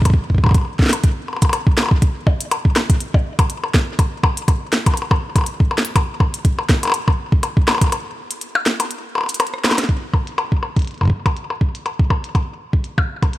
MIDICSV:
0, 0, Header, 1, 3, 480
1, 0, Start_track
1, 0, Tempo, 491803
1, 53, Time_signature, 4, 2, 24, 8
1, 13059, End_track
2, 0, Start_track
2, 0, Title_t, "Percussion blips"
2, 52, Note_on_c, 9, 60, 47
2, 149, Note_off_c, 9, 60, 0
2, 427, Note_on_c, 9, 60, 49
2, 453, Note_off_c, 9, 60, 0
2, 453, Note_on_c, 9, 60, 40
2, 480, Note_off_c, 9, 60, 0
2, 480, Note_on_c, 9, 60, 32
2, 506, Note_off_c, 9, 60, 0
2, 506, Note_on_c, 9, 60, 28
2, 532, Note_off_c, 9, 60, 0
2, 532, Note_on_c, 9, 60, 21
2, 566, Note_off_c, 9, 60, 0
2, 566, Note_on_c, 9, 60, 17
2, 599, Note_off_c, 9, 60, 0
2, 599, Note_on_c, 9, 60, 14
2, 632, Note_off_c, 9, 60, 0
2, 632, Note_on_c, 9, 60, 12
2, 730, Note_off_c, 9, 60, 0
2, 906, Note_on_c, 9, 60, 50
2, 1004, Note_off_c, 9, 60, 0
2, 1252, Note_on_c, 9, 60, 21
2, 1297, Note_off_c, 9, 60, 0
2, 1297, Note_on_c, 9, 60, 25
2, 1332, Note_off_c, 9, 60, 0
2, 1332, Note_on_c, 9, 60, 28
2, 1386, Note_off_c, 9, 60, 0
2, 1386, Note_on_c, 9, 60, 33
2, 1413, Note_off_c, 9, 60, 0
2, 1413, Note_on_c, 9, 60, 37
2, 1458, Note_off_c, 9, 60, 0
2, 1458, Note_on_c, 9, 60, 42
2, 1493, Note_off_c, 9, 60, 0
2, 1493, Note_on_c, 9, 60, 73
2, 1591, Note_off_c, 9, 60, 0
2, 1733, Note_on_c, 9, 60, 22
2, 1759, Note_off_c, 9, 60, 0
2, 1759, Note_on_c, 9, 60, 27
2, 1787, Note_off_c, 9, 60, 0
2, 1787, Note_on_c, 9, 60, 33
2, 1813, Note_off_c, 9, 60, 0
2, 1813, Note_on_c, 9, 60, 37
2, 1840, Note_off_c, 9, 60, 0
2, 1840, Note_on_c, 9, 60, 41
2, 1937, Note_off_c, 9, 60, 0
2, 2213, Note_on_c, 9, 60, 52
2, 2310, Note_off_c, 9, 60, 0
2, 2454, Note_on_c, 9, 60, 70
2, 2552, Note_off_c, 9, 60, 0
2, 2693, Note_on_c, 9, 60, 50
2, 2791, Note_off_c, 9, 60, 0
2, 3068, Note_on_c, 9, 60, 52
2, 3166, Note_off_c, 9, 60, 0
2, 3308, Note_on_c, 9, 60, 73
2, 3405, Note_off_c, 9, 60, 0
2, 3548, Note_on_c, 9, 60, 50
2, 3646, Note_off_c, 9, 60, 0
2, 3893, Note_on_c, 9, 60, 52
2, 3991, Note_off_c, 9, 60, 0
2, 4134, Note_on_c, 9, 60, 79
2, 4232, Note_off_c, 9, 60, 0
2, 4373, Note_on_c, 9, 60, 49
2, 4471, Note_off_c, 9, 60, 0
2, 4748, Note_on_c, 9, 60, 50
2, 4818, Note_off_c, 9, 60, 0
2, 4818, Note_on_c, 9, 60, 41
2, 4899, Note_off_c, 9, 60, 0
2, 4899, Note_on_c, 9, 60, 33
2, 4988, Note_off_c, 9, 60, 0
2, 4988, Note_on_c, 9, 60, 78
2, 5086, Note_off_c, 9, 60, 0
2, 5228, Note_on_c, 9, 60, 47
2, 5254, Note_off_c, 9, 60, 0
2, 5254, Note_on_c, 9, 60, 38
2, 5281, Note_off_c, 9, 60, 0
2, 5281, Note_on_c, 9, 60, 32
2, 5307, Note_off_c, 9, 60, 0
2, 5307, Note_on_c, 9, 60, 25
2, 5405, Note_off_c, 9, 60, 0
2, 5573, Note_on_c, 9, 60, 51
2, 5671, Note_off_c, 9, 60, 0
2, 5813, Note_on_c, 9, 60, 79
2, 5911, Note_off_c, 9, 60, 0
2, 6054, Note_on_c, 9, 60, 52
2, 6152, Note_off_c, 9, 60, 0
2, 6428, Note_on_c, 9, 60, 52
2, 6525, Note_off_c, 9, 60, 0
2, 6667, Note_on_c, 9, 60, 35
2, 6688, Note_off_c, 9, 60, 0
2, 6688, Note_on_c, 9, 60, 44
2, 6710, Note_off_c, 9, 60, 0
2, 6710, Note_on_c, 9, 60, 51
2, 6731, Note_off_c, 9, 60, 0
2, 6731, Note_on_c, 9, 60, 60
2, 6752, Note_off_c, 9, 60, 0
2, 6752, Note_on_c, 9, 60, 71
2, 6849, Note_off_c, 9, 60, 0
2, 6907, Note_on_c, 9, 60, 56
2, 7005, Note_off_c, 9, 60, 0
2, 7253, Note_on_c, 9, 60, 54
2, 7350, Note_off_c, 9, 60, 0
2, 7493, Note_on_c, 9, 60, 74
2, 7526, Note_off_c, 9, 60, 0
2, 7526, Note_on_c, 9, 60, 61
2, 7560, Note_off_c, 9, 60, 0
2, 7560, Note_on_c, 9, 60, 51
2, 7593, Note_off_c, 9, 60, 0
2, 7593, Note_on_c, 9, 60, 41
2, 7627, Note_off_c, 9, 60, 0
2, 7627, Note_on_c, 9, 60, 36
2, 7654, Note_off_c, 9, 60, 0
2, 7654, Note_on_c, 9, 60, 29
2, 7680, Note_off_c, 9, 60, 0
2, 7680, Note_on_c, 9, 60, 24
2, 7707, Note_off_c, 9, 60, 0
2, 7707, Note_on_c, 9, 60, 20
2, 7732, Note_off_c, 9, 60, 0
2, 7732, Note_on_c, 9, 60, 55
2, 7830, Note_off_c, 9, 60, 0
2, 8347, Note_on_c, 9, 60, 82
2, 8445, Note_off_c, 9, 60, 0
2, 8587, Note_on_c, 9, 60, 55
2, 8685, Note_off_c, 9, 60, 0
2, 8933, Note_on_c, 9, 60, 50
2, 8960, Note_off_c, 9, 60, 0
2, 8960, Note_on_c, 9, 60, 42
2, 8987, Note_off_c, 9, 60, 0
2, 8987, Note_on_c, 9, 60, 35
2, 9014, Note_off_c, 9, 60, 0
2, 9014, Note_on_c, 9, 60, 27
2, 9040, Note_off_c, 9, 60, 0
2, 9040, Note_on_c, 9, 60, 23
2, 9138, Note_off_c, 9, 60, 0
2, 9172, Note_on_c, 9, 60, 81
2, 9270, Note_off_c, 9, 60, 0
2, 9412, Note_on_c, 9, 60, 25
2, 9439, Note_off_c, 9, 60, 0
2, 9439, Note_on_c, 9, 60, 30
2, 9465, Note_off_c, 9, 60, 0
2, 9465, Note_on_c, 9, 60, 37
2, 9492, Note_off_c, 9, 60, 0
2, 9492, Note_on_c, 9, 60, 39
2, 9519, Note_off_c, 9, 60, 0
2, 9519, Note_on_c, 9, 60, 46
2, 9617, Note_off_c, 9, 60, 0
2, 9892, Note_on_c, 9, 60, 49
2, 9990, Note_off_c, 9, 60, 0
2, 10131, Note_on_c, 9, 60, 77
2, 10229, Note_off_c, 9, 60, 0
2, 10372, Note_on_c, 9, 60, 50
2, 10469, Note_off_c, 9, 60, 0
2, 10747, Note_on_c, 9, 60, 51
2, 10845, Note_off_c, 9, 60, 0
2, 10987, Note_on_c, 9, 60, 72
2, 11084, Note_off_c, 9, 60, 0
2, 11227, Note_on_c, 9, 60, 51
2, 11324, Note_off_c, 9, 60, 0
2, 11573, Note_on_c, 9, 60, 49
2, 11670, Note_off_c, 9, 60, 0
2, 11813, Note_on_c, 9, 60, 75
2, 11911, Note_off_c, 9, 60, 0
2, 12054, Note_on_c, 9, 60, 48
2, 12151, Note_off_c, 9, 60, 0
2, 12668, Note_on_c, 9, 60, 75
2, 12766, Note_off_c, 9, 60, 0
2, 12908, Note_on_c, 9, 60, 48
2, 13006, Note_off_c, 9, 60, 0
2, 13059, End_track
3, 0, Start_track
3, 0, Title_t, "Drums"
3, 17, Note_on_c, 9, 36, 77
3, 52, Note_off_c, 9, 36, 0
3, 52, Note_on_c, 9, 36, 83
3, 52, Note_on_c, 9, 42, 49
3, 97, Note_off_c, 9, 36, 0
3, 97, Note_on_c, 9, 36, 96
3, 132, Note_off_c, 9, 36, 0
3, 132, Note_on_c, 9, 36, 103
3, 149, Note_off_c, 9, 42, 0
3, 230, Note_off_c, 9, 36, 0
3, 292, Note_on_c, 9, 36, 50
3, 337, Note_off_c, 9, 36, 0
3, 337, Note_on_c, 9, 36, 57
3, 372, Note_off_c, 9, 36, 0
3, 372, Note_on_c, 9, 36, 67
3, 426, Note_off_c, 9, 36, 0
3, 426, Note_on_c, 9, 36, 78
3, 452, Note_off_c, 9, 36, 0
3, 452, Note_on_c, 9, 36, 87
3, 497, Note_off_c, 9, 36, 0
3, 497, Note_on_c, 9, 36, 96
3, 532, Note_off_c, 9, 36, 0
3, 532, Note_on_c, 9, 36, 124
3, 532, Note_on_c, 9, 42, 49
3, 630, Note_off_c, 9, 36, 0
3, 630, Note_off_c, 9, 42, 0
3, 771, Note_on_c, 9, 38, 51
3, 772, Note_on_c, 9, 36, 115
3, 805, Note_off_c, 9, 38, 0
3, 805, Note_on_c, 9, 38, 70
3, 839, Note_off_c, 9, 38, 0
3, 839, Note_on_c, 9, 38, 84
3, 870, Note_off_c, 9, 36, 0
3, 872, Note_off_c, 9, 38, 0
3, 872, Note_on_c, 9, 38, 101
3, 906, Note_on_c, 9, 42, 65
3, 970, Note_off_c, 9, 38, 0
3, 1004, Note_off_c, 9, 42, 0
3, 1011, Note_on_c, 9, 42, 50
3, 1012, Note_on_c, 9, 36, 117
3, 1109, Note_off_c, 9, 42, 0
3, 1110, Note_off_c, 9, 36, 0
3, 1386, Note_on_c, 9, 42, 63
3, 1386, Note_on_c, 9, 82, 59
3, 1387, Note_on_c, 9, 36, 111
3, 1484, Note_off_c, 9, 36, 0
3, 1484, Note_off_c, 9, 42, 0
3, 1484, Note_off_c, 9, 82, 0
3, 1493, Note_on_c, 9, 42, 53
3, 1591, Note_off_c, 9, 42, 0
3, 1627, Note_on_c, 9, 36, 120
3, 1724, Note_off_c, 9, 36, 0
3, 1733, Note_on_c, 9, 38, 115
3, 1733, Note_on_c, 9, 82, 60
3, 1830, Note_off_c, 9, 38, 0
3, 1830, Note_off_c, 9, 82, 0
3, 1867, Note_on_c, 9, 36, 112
3, 1964, Note_off_c, 9, 36, 0
3, 1972, Note_on_c, 9, 36, 102
3, 1973, Note_on_c, 9, 42, 48
3, 2070, Note_off_c, 9, 36, 0
3, 2070, Note_off_c, 9, 42, 0
3, 2212, Note_on_c, 9, 36, 115
3, 2310, Note_off_c, 9, 36, 0
3, 2348, Note_on_c, 9, 42, 64
3, 2445, Note_off_c, 9, 42, 0
3, 2454, Note_on_c, 9, 42, 50
3, 2552, Note_off_c, 9, 42, 0
3, 2587, Note_on_c, 9, 36, 102
3, 2684, Note_off_c, 9, 36, 0
3, 2693, Note_on_c, 9, 38, 115
3, 2791, Note_off_c, 9, 38, 0
3, 2827, Note_on_c, 9, 36, 121
3, 2827, Note_on_c, 9, 42, 60
3, 2924, Note_off_c, 9, 36, 0
3, 2925, Note_off_c, 9, 42, 0
3, 2933, Note_on_c, 9, 42, 48
3, 3031, Note_off_c, 9, 42, 0
3, 3067, Note_on_c, 9, 36, 102
3, 3165, Note_off_c, 9, 36, 0
3, 3307, Note_on_c, 9, 36, 122
3, 3308, Note_on_c, 9, 42, 59
3, 3405, Note_off_c, 9, 36, 0
3, 3405, Note_off_c, 9, 42, 0
3, 3413, Note_on_c, 9, 42, 49
3, 3511, Note_off_c, 9, 42, 0
3, 3652, Note_on_c, 9, 36, 106
3, 3653, Note_on_c, 9, 38, 113
3, 3750, Note_off_c, 9, 36, 0
3, 3751, Note_off_c, 9, 38, 0
3, 3892, Note_on_c, 9, 36, 113
3, 3893, Note_on_c, 9, 42, 58
3, 3990, Note_off_c, 9, 36, 0
3, 3991, Note_off_c, 9, 42, 0
3, 4132, Note_on_c, 9, 36, 101
3, 4230, Note_off_c, 9, 36, 0
3, 4268, Note_on_c, 9, 42, 63
3, 4365, Note_off_c, 9, 42, 0
3, 4372, Note_on_c, 9, 36, 117
3, 4373, Note_on_c, 9, 42, 48
3, 4470, Note_off_c, 9, 36, 0
3, 4471, Note_off_c, 9, 42, 0
3, 4613, Note_on_c, 9, 38, 113
3, 4613, Note_on_c, 9, 82, 62
3, 4711, Note_off_c, 9, 38, 0
3, 4711, Note_off_c, 9, 82, 0
3, 4747, Note_on_c, 9, 36, 106
3, 4748, Note_on_c, 9, 42, 60
3, 4844, Note_off_c, 9, 36, 0
3, 4845, Note_off_c, 9, 42, 0
3, 4853, Note_on_c, 9, 42, 49
3, 4951, Note_off_c, 9, 42, 0
3, 4987, Note_on_c, 9, 36, 109
3, 5084, Note_off_c, 9, 36, 0
3, 5227, Note_on_c, 9, 36, 102
3, 5228, Note_on_c, 9, 42, 59
3, 5325, Note_off_c, 9, 36, 0
3, 5326, Note_off_c, 9, 42, 0
3, 5333, Note_on_c, 9, 42, 51
3, 5431, Note_off_c, 9, 42, 0
3, 5467, Note_on_c, 9, 36, 114
3, 5565, Note_off_c, 9, 36, 0
3, 5640, Note_on_c, 9, 38, 108
3, 5708, Note_on_c, 9, 42, 64
3, 5738, Note_off_c, 9, 38, 0
3, 5805, Note_off_c, 9, 42, 0
3, 5813, Note_on_c, 9, 36, 104
3, 5813, Note_on_c, 9, 42, 50
3, 5910, Note_off_c, 9, 36, 0
3, 5911, Note_off_c, 9, 42, 0
3, 6053, Note_on_c, 9, 36, 108
3, 6150, Note_off_c, 9, 36, 0
3, 6188, Note_on_c, 9, 42, 67
3, 6285, Note_off_c, 9, 42, 0
3, 6293, Note_on_c, 9, 36, 106
3, 6293, Note_on_c, 9, 42, 53
3, 6390, Note_off_c, 9, 36, 0
3, 6391, Note_off_c, 9, 42, 0
3, 6533, Note_on_c, 9, 36, 116
3, 6534, Note_on_c, 9, 38, 113
3, 6630, Note_off_c, 9, 36, 0
3, 6631, Note_off_c, 9, 38, 0
3, 6667, Note_on_c, 9, 42, 63
3, 6765, Note_off_c, 9, 42, 0
3, 6773, Note_on_c, 9, 42, 52
3, 6870, Note_off_c, 9, 42, 0
3, 6907, Note_on_c, 9, 36, 100
3, 7005, Note_off_c, 9, 36, 0
3, 7147, Note_on_c, 9, 36, 113
3, 7244, Note_off_c, 9, 36, 0
3, 7253, Note_on_c, 9, 42, 52
3, 7350, Note_off_c, 9, 42, 0
3, 7387, Note_on_c, 9, 36, 102
3, 7484, Note_off_c, 9, 36, 0
3, 7493, Note_on_c, 9, 38, 108
3, 7591, Note_off_c, 9, 38, 0
3, 7627, Note_on_c, 9, 36, 116
3, 7627, Note_on_c, 9, 42, 66
3, 7724, Note_off_c, 9, 36, 0
3, 7725, Note_off_c, 9, 42, 0
3, 7732, Note_on_c, 9, 42, 51
3, 7830, Note_off_c, 9, 42, 0
3, 8107, Note_on_c, 9, 42, 70
3, 8204, Note_off_c, 9, 42, 0
3, 8212, Note_on_c, 9, 42, 53
3, 8310, Note_off_c, 9, 42, 0
3, 8453, Note_on_c, 9, 38, 112
3, 8453, Note_on_c, 9, 82, 58
3, 8551, Note_off_c, 9, 38, 0
3, 8551, Note_off_c, 9, 82, 0
3, 8587, Note_on_c, 9, 42, 68
3, 8685, Note_off_c, 9, 42, 0
3, 8693, Note_on_c, 9, 42, 53
3, 8791, Note_off_c, 9, 42, 0
3, 9067, Note_on_c, 9, 42, 60
3, 9067, Note_on_c, 9, 82, 57
3, 9119, Note_off_c, 9, 42, 0
3, 9119, Note_on_c, 9, 42, 53
3, 9165, Note_off_c, 9, 82, 0
3, 9172, Note_off_c, 9, 42, 0
3, 9172, Note_on_c, 9, 37, 62
3, 9172, Note_on_c, 9, 42, 53
3, 9240, Note_off_c, 9, 42, 0
3, 9240, Note_on_c, 9, 42, 36
3, 9270, Note_off_c, 9, 37, 0
3, 9307, Note_on_c, 9, 37, 60
3, 9338, Note_off_c, 9, 42, 0
3, 9405, Note_off_c, 9, 37, 0
3, 9412, Note_on_c, 9, 37, 85
3, 9412, Note_on_c, 9, 38, 109
3, 9412, Note_on_c, 9, 82, 59
3, 9479, Note_off_c, 9, 38, 0
3, 9479, Note_on_c, 9, 38, 89
3, 9510, Note_off_c, 9, 37, 0
3, 9510, Note_off_c, 9, 82, 0
3, 9546, Note_off_c, 9, 38, 0
3, 9546, Note_on_c, 9, 37, 87
3, 9546, Note_on_c, 9, 38, 76
3, 9546, Note_on_c, 9, 42, 68
3, 9600, Note_off_c, 9, 38, 0
3, 9600, Note_on_c, 9, 38, 61
3, 9644, Note_off_c, 9, 37, 0
3, 9644, Note_off_c, 9, 42, 0
3, 9652, Note_on_c, 9, 36, 96
3, 9653, Note_on_c, 9, 42, 48
3, 9697, Note_off_c, 9, 38, 0
3, 9750, Note_off_c, 9, 36, 0
3, 9750, Note_off_c, 9, 42, 0
3, 9892, Note_on_c, 9, 36, 109
3, 9990, Note_off_c, 9, 36, 0
3, 10026, Note_on_c, 9, 42, 65
3, 10124, Note_off_c, 9, 42, 0
3, 10131, Note_on_c, 9, 42, 48
3, 10229, Note_off_c, 9, 42, 0
3, 10267, Note_on_c, 9, 36, 93
3, 10364, Note_off_c, 9, 36, 0
3, 10506, Note_on_c, 9, 36, 110
3, 10506, Note_on_c, 9, 42, 60
3, 10533, Note_off_c, 9, 42, 0
3, 10533, Note_on_c, 9, 42, 49
3, 10560, Note_off_c, 9, 42, 0
3, 10560, Note_on_c, 9, 42, 40
3, 10586, Note_off_c, 9, 42, 0
3, 10586, Note_on_c, 9, 42, 32
3, 10604, Note_off_c, 9, 36, 0
3, 10614, Note_off_c, 9, 42, 0
3, 10614, Note_on_c, 9, 42, 50
3, 10647, Note_off_c, 9, 42, 0
3, 10647, Note_on_c, 9, 42, 21
3, 10680, Note_off_c, 9, 42, 0
3, 10680, Note_on_c, 9, 42, 17
3, 10714, Note_off_c, 9, 42, 0
3, 10714, Note_on_c, 9, 42, 15
3, 10746, Note_on_c, 9, 36, 43
3, 10768, Note_off_c, 9, 36, 0
3, 10768, Note_on_c, 9, 36, 52
3, 10789, Note_off_c, 9, 36, 0
3, 10789, Note_on_c, 9, 36, 62
3, 10810, Note_off_c, 9, 36, 0
3, 10810, Note_on_c, 9, 36, 70
3, 10812, Note_off_c, 9, 42, 0
3, 10831, Note_off_c, 9, 36, 0
3, 10831, Note_on_c, 9, 36, 78
3, 10928, Note_off_c, 9, 36, 0
3, 10986, Note_on_c, 9, 36, 112
3, 10987, Note_on_c, 9, 42, 62
3, 11084, Note_off_c, 9, 36, 0
3, 11084, Note_off_c, 9, 42, 0
3, 11093, Note_on_c, 9, 42, 50
3, 11191, Note_off_c, 9, 42, 0
3, 11332, Note_on_c, 9, 36, 96
3, 11430, Note_off_c, 9, 36, 0
3, 11467, Note_on_c, 9, 42, 67
3, 11565, Note_off_c, 9, 42, 0
3, 11573, Note_on_c, 9, 42, 49
3, 11670, Note_off_c, 9, 42, 0
3, 11706, Note_on_c, 9, 36, 122
3, 11804, Note_off_c, 9, 36, 0
3, 11812, Note_on_c, 9, 36, 101
3, 11910, Note_off_c, 9, 36, 0
3, 11947, Note_on_c, 9, 42, 66
3, 12045, Note_off_c, 9, 42, 0
3, 12052, Note_on_c, 9, 36, 117
3, 12054, Note_on_c, 9, 42, 50
3, 12150, Note_off_c, 9, 36, 0
3, 12151, Note_off_c, 9, 42, 0
3, 12427, Note_on_c, 9, 36, 101
3, 12524, Note_off_c, 9, 36, 0
3, 12533, Note_on_c, 9, 42, 51
3, 12631, Note_off_c, 9, 42, 0
3, 12667, Note_on_c, 9, 36, 112
3, 12764, Note_off_c, 9, 36, 0
3, 12907, Note_on_c, 9, 36, 104
3, 12908, Note_on_c, 9, 42, 63
3, 13004, Note_off_c, 9, 36, 0
3, 13006, Note_off_c, 9, 42, 0
3, 13014, Note_on_c, 9, 42, 52
3, 13059, Note_off_c, 9, 42, 0
3, 13059, End_track
0, 0, End_of_file